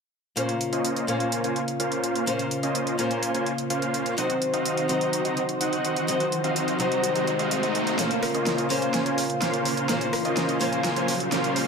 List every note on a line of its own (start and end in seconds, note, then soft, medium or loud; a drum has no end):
0.36 1.05 A#2 medium
0.36 4.14 C#3 medium
0.36 1.05 A#3 medium
0.36 4.14 A#3 medium
0.36 0.54 A#3 medium
0.36 1.05 C#4 medium
0.36 0.54 C#4 medium
0.36 0.54 F4 medium
0.36 4.14 F4 medium
0.36 1.06 F4 medium
0.36 0.54 C5 medium
0.36 7.95 C5 medium
0.36 1.06 C5 medium
0.36 0.54 F5 medium
0.36 closed hi-hat medium
0.49 closed hi-hat soft
0.61 closed hi-hat medium
0.73 1.05 A#3 medium
0.73 1.05 C#4 medium
0.73 1.05 F4 medium
0.73 1.05 C5 medium
0.73 1.05 D#5 medium
0.73 closed hi-hat soft
0.85 closed hi-hat medium
0.96 closed hi-hat soft
1.07 2.24 A#2 medium
1.07 2.24 A#3 medium
1.07 1.41 A#3 medium
1.07 1.41 C#4 medium
1.07 2.25 C#4 medium
1.07 1.41 F4 medium
1.07 2.25 F4 medium
1.07 1.41 C5 medium
1.07 2.25 C5 medium
1.07 1.41 G#5 medium
1.07 closed hi-hat medium
1.20 closed hi-hat soft
1.32 closed hi-hat medium
1.44 1.61 A#3 medium
1.44 1.61 C#4 medium
1.44 1.61 F4 medium
1.44 1.61 C5 medium
1.44 1.61 G#5 medium
1.44 closed hi-hat soft
1.56 closed hi-hat soft
1.68 closed hi-hat soft
1.80 2.25 A#3 medium
1.80 2.24 C#4 medium
1.80 2.25 F4 medium
1.80 2.25 C5 medium
1.80 2.25 F5 medium
1.80 closed hi-hat medium
1.92 closed hi-hat soft
2.04 closed hi-hat medium
2.15 closed hi-hat soft
2.26 2.95 A#2 medium
2.26 2.96 A#3 medium
2.26 2.45 A#3 medium
2.26 2.96 C#4 medium
2.26 2.45 C#4 medium
2.26 2.45 F4 medium
2.26 2.96 F4 medium
2.26 2.45 C5 medium
2.26 2.97 C5 medium
2.26 2.45 F5 medium
2.26 closed hi-hat medium
2.39 closed hi-hat soft
2.51 closed hi-hat medium
2.63 2.96 A#3 medium
2.63 2.96 C#4 medium
2.63 2.96 F4 medium
2.63 2.96 C5 medium
2.63 2.96 D#5 medium
2.63 closed hi-hat soft
2.75 closed hi-hat medium
2.87 closed hi-hat soft
2.98 4.14 A#2 medium
2.98 4.15 A#3 medium
2.98 3.32 A#3 medium
2.98 3.32 C#4 medium
2.98 4.15 C#4 medium
2.98 3.32 F4 medium
2.98 4.15 F4 medium
2.98 3.32 C5 medium
2.98 4.16 C5 medium
2.98 3.32 G#5 medium
2.98 closed hi-hat medium
3.11 closed hi-hat soft
3.23 closed hi-hat medium
3.35 3.52 A#3 medium
3.35 3.52 C#4 medium
3.35 3.52 F4 medium
3.35 3.52 C5 medium
3.35 3.52 G#5 medium
3.35 closed hi-hat soft
3.46 closed hi-hat soft
3.58 closed hi-hat soft
3.70 4.15 A#3 medium
3.70 4.15 C#4 medium
3.70 4.15 F4 medium
3.70 4.15 C5 medium
3.70 4.15 F5 medium
3.70 closed hi-hat medium
3.82 closed hi-hat soft
3.94 closed hi-hat medium
4.06 closed hi-hat soft
4.17 4.86 C3 medium
4.17 7.95 D#3 medium
4.17 4.86 F#3 medium
4.17 4.86 C4 medium
4.17 4.35 C4 medium
4.17 7.95 C4 medium
4.17 4.35 D#4 medium
4.17 4.87 D#4 medium
4.17 4.35 F#4 medium
4.17 7.95 F#4 medium
4.17 4.87 C5 medium
4.17 4.35 D#5 medium
4.17 4.35 F#5 medium
4.17 closed hi-hat medium
4.17 riser medium
4.30 closed hi-hat soft
4.42 closed hi-hat medium
4.54 4.86 C4 medium
4.54 4.86 D#4 medium
4.54 4.86 F#4 medium
4.54 4.86 D#5 medium
4.54 4.86 F5 medium
4.54 closed hi-hat soft
4.66 closed hi-hat medium
4.77 closed hi-hat soft
4.88 6.05 C3 medium
4.88 6.05 F#3 medium
4.88 6.05 C4 medium
4.88 5.22 C4 medium
4.88 5.22 D#4 medium
4.88 6.06 D#4 medium
4.88 5.22 F#4 medium
4.88 6.06 C5 medium
4.88 5.22 D#5 medium
4.88 5.22 A#5 medium
4.88 closed hi-hat medium
5.01 closed hi-hat soft
5.13 closed hi-hat medium
5.25 5.42 C4 medium
5.25 5.42 D#4 medium
5.25 5.42 F#4 medium
5.25 5.42 D#5 medium
5.25 5.42 A#5 medium
5.25 closed hi-hat soft
5.37 closed hi-hat soft
5.49 closed hi-hat soft
5.61 6.05 C4 medium
5.61 6.05 D#4 medium
5.61 6.05 F#4 medium
5.61 6.05 D#5 medium
5.61 6.05 F#5 medium
5.61 closed hi-hat medium
5.73 closed hi-hat soft
5.85 closed hi-hat medium
5.96 closed hi-hat soft
6.07 6.76 C3 medium
6.07 6.77 F#3 medium
6.07 6.26 C4 medium
6.07 6.77 C4 medium
6.07 6.26 D#4 medium
6.07 6.77 D#4 medium
6.07 6.26 F#4 medium
6.07 6.78 C5 medium
6.07 6.26 D#5 medium
6.07 6.26 F#5 medium
6.07 closed hi-hat medium
6.20 closed hi-hat soft
6.32 closed hi-hat medium
6.44 6.77 C4 medium
6.44 6.77 D#4 medium
6.44 6.77 F#4 medium
6.44 6.77 D#5 medium
6.44 6.77 F5 medium
6.44 closed hi-hat soft
6.56 closed hi-hat medium
6.68 closed hi-hat soft
6.79 7.95 C3 medium
6.79 7.96 F#3 medium
6.79 7.13 C4 medium
6.79 7.96 C4 medium
6.79 7.13 D#4 medium
6.79 7.96 D#4 medium
6.79 7.13 F#4 medium
6.79 7.97 C5 medium
6.79 7.13 D#5 medium
6.79 7.13 A#5 medium
6.79 closed hi-hat medium
6.92 closed hi-hat soft
7.04 closed hi-hat medium
7.15 7.33 C4 medium
7.15 7.33 D#4 medium
7.15 7.33 F#4 medium
7.15 7.33 D#5 medium
7.15 7.33 A#5 medium
7.15 closed hi-hat soft
7.27 closed hi-hat soft
7.39 7.60 C4 medium
7.39 7.60 D#4 medium
7.39 7.60 F#4 medium
7.39 7.60 D#5 medium
7.39 7.60 F5 medium
7.39 closed hi-hat soft
7.51 closed hi-hat medium
7.63 7.96 C4 medium
7.63 7.96 D#4 medium
7.63 7.96 F#4 medium
7.63 7.96 D#5 medium
7.63 7.96 A#5 loud
7.63 closed hi-hat soft
7.75 closed hi-hat medium
7.87 closed hi-hat soft
7.98 8.67 A#2 medium
7.98 11.67 C#3 medium
7.98 8.67 A#3 medium
7.98 8.16 A#3 medium
7.98 11.67 A#3 medium
7.98 8.16 C#4 medium
7.98 8.67 C#4 medium
7.98 8.16 F4 medium
7.98 11.67 F4 medium
7.98 8.68 F4 medium
7.98 11.67 C5 medium
7.98 8.16 C5 medium
7.98 8.68 C5 medium
7.98 8.16 F5 medium
7.98 snare soft
7.98 closed hi-hat medium
7.98 riser medium
8.11 closed hi-hat soft
8.23 cross-stick medium
8.23 open hi-hat loud
8.34 8.67 A#3 medium
8.34 8.67 C#4 medium
8.34 8.67 F4 medium
8.34 8.67 C5 medium
8.34 8.67 D#5 medium
8.34 closed hi-hat soft
8.46 snare soft
8.46 closed hi-hat medium
8.58 closed hi-hat soft
8.69 9.86 A#2 medium
8.69 9.86 A#3 medium
8.69 9.03 A#3 medium
8.69 9.86 C#4 medium
8.69 9.03 C#4 medium
8.69 9.03 F4 medium
8.69 9.87 F4 medium
8.69 9.03 C5 medium
8.69 9.87 C5 medium
8.69 9.03 G#5 medium
8.69 open hi-hat medium
8.82 closed hi-hat soft
8.94 snare soft
8.94 closed hi-hat medium
9.06 9.23 A#3 medium
9.06 9.23 C#4 medium
9.06 9.23 F4 medium
9.06 9.23 C5 medium
9.06 9.23 G#5 medium
9.06 closed hi-hat soft
9.18 open hi-hat loud
9.30 closed hi-hat soft
9.42 9.86 A#3 medium
9.42 9.86 C#4 medium
9.42 9.86 F4 medium
9.42 9.86 C5 medium
9.42 9.86 F5 medium
9.42 snare soft
9.42 closed hi-hat medium
9.54 closed hi-hat soft
9.65 open hi-hat medium
9.77 closed hi-hat soft
9.88 10.57 A#2 medium
9.88 10.58 A#3 medium
9.88 10.07 A#3 medium
9.88 10.58 C#4 medium
9.88 10.07 C#4 medium
9.88 10.07 F4 medium
9.88 10.58 F4 medium
9.88 10.07 C5 medium
9.88 10.58 C5 medium
9.88 10.07 F5 medium
9.88 snare soft
9.88 closed hi-hat medium
10.01 closed hi-hat soft
10.13 cross-stick medium
10.13 open hi-hat loud
10.25 10.58 A#3 medium
10.25 10.58 C#4 medium
10.25 10.58 F4 medium
10.25 10.58 C5 medium
10.25 10.58 D#5 medium
10.25 closed hi-hat soft
10.37 snare soft
10.37 closed hi-hat medium
10.49 closed hi-hat soft
10.59 11.67 A#2 medium
10.59 11.67 A#3 medium
10.59 10.94 A#3 medium
10.59 11.67 C#4 medium
10.59 10.94 C#4 medium
10.59 10.94 F4 medium
10.59 11.67 F4 medium
10.59 10.94 C5 medium
10.59 11.67 C5 medium
10.59 10.94 G#5 medium
10.59 open hi-hat medium
10.73 closed hi-hat soft
10.84 snare medium
10.84 closed hi-hat medium
10.96 11.14 A#3 medium
10.96 11.14 C#4 medium
10.96 11.14 F4 medium
10.96 11.14 C5 medium
10.96 11.14 G#5 medium
10.96 closed hi-hat soft
11.08 open hi-hat loud
11.20 closed hi-hat soft
11.32 11.67 A#3 medium
11.32 11.67 C#4 medium
11.32 11.67 F4 medium
11.32 11.67 C5 medium
11.32 11.67 F5 medium
11.32 snare medium
11.32 closed hi-hat medium
11.44 closed hi-hat soft
11.56 open hi-hat medium